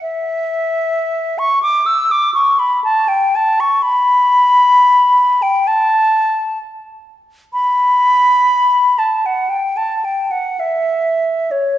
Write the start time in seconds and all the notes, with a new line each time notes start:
0.02 E5
1.39 C#6
1.63 D6
1.86 E6
2.11 D6
2.34 C#6
2.59 B5
2.84 A5
3.08 G5
3.36 A5
3.60 C#6
3.82 B5
5.42 G5
5.67 A5
7.53 B5
8.99 A5
9.26 F#5
9.49 G5
9.77 A5
10.05 G5
10.31 F#5
10.60 E5
11.51 C#5